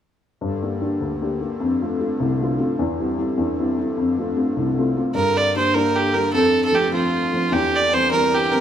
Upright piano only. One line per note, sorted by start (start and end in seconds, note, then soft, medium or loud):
0.41 0.80 G2 medium
0.62 0.80 A#3 soft
0.62 0.80 D4 soft
0.62 0.80 G4 soft
0.81 1.14 A#3 soft
0.81 1.14 D4 soft
0.81 1.14 G4 soft
1.00 1.40 D2 soft
1.21 1.39 A#3 soft
1.21 1.39 D4 soft
1.21 1.39 G4 soft
1.40 1.55 A#3 soft
1.40 1.56 D4 soft
1.40 1.55 G4 soft
1.60 1.99 F2 medium
1.82 1.99 A3 soft
1.82 1.98 C4 soft
1.82 1.99 F4 soft
2.00 2.32 A3 soft
2.00 2.32 C4 soft
2.00 2.33 F4 soft
2.20 2.58 C2 medium
2.41 2.58 A3 soft
2.41 2.58 C4 soft
2.41 2.58 F4 soft
2.59 2.74 A3 soft
2.59 2.74 C4 soft
2.59 2.74 F4 soft
2.79 3.17 E2 medium
3.00 3.17 G3 soft
3.00 3.17 C4 soft
3.00 3.17 E4 soft
3.18 3.50 G3 soft
3.18 3.51 C4 soft
3.18 3.51 E4 soft
3.38 3.76 E2 soft
3.59 3.77 G3 soft
3.59 3.77 C4 soft
3.59 3.77 E4 soft
3.78 3.93 G3 soft
3.78 3.93 C4 soft
3.78 3.93 E4 soft
3.97 4.36 F2 medium
4.18 4.35 A3 soft
4.18 4.36 C4 soft
4.18 4.36 F4 soft
4.37 4.69 A3 soft
4.37 4.69 C4 soft
4.37 4.69 F4 soft
4.57 4.95 C2 medium
4.78 4.95 A3 soft
4.78 4.96 C4 soft
4.78 4.96 F4 soft
4.97 5.11 A3 soft
4.97 5.12 C4 soft
4.97 5.12 F4 soft
5.14 6.29 G2 medium
5.56 5.73 G3 soft
5.56 5.74 A#3 soft
5.56 5.74 D4 soft
5.75 6.12 G3 soft
5.75 6.13 A#3 soft
5.75 6.13 D4 soft
6.14 6.32 G3 soft
6.14 6.32 A#3 soft
6.14 6.32 D4 soft
6.33 7.48 F2 medium
6.72 6.90 F3 soft
6.72 6.91 A3 soft
6.72 6.91 C4 soft
6.92 7.31 F3 soft
6.92 7.31 A3 soft
6.92 7.31 C4 soft
7.33 7.51 F3 soft
7.33 7.51 A3 soft
7.33 7.51 C4 soft
7.52 8.61 E2 medium
7.93 8.10 E3 soft
7.93 8.10 G3 soft
7.93 8.11 C4 soft
8.11 8.50 E3 soft
8.11 8.50 G3 soft
8.11 8.50 C4 soft
8.53 8.61 E3 soft
8.53 8.61 G3 soft
8.53 8.61 C4 soft